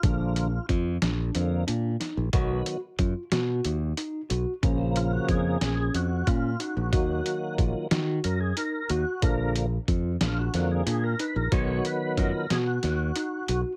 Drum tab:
HH |xxxxxxx|xxxxxxx|xxxxxxx|xxxxxxx|
SD |---o--o|---o---|---o---|---o---|
BD |o-o----|o-o----|o-o--o-|o-o----|

HH |xxxxxxx|xxxxxxx|
SD |---oo--|---oo--|
BD |o-o----|o-o----|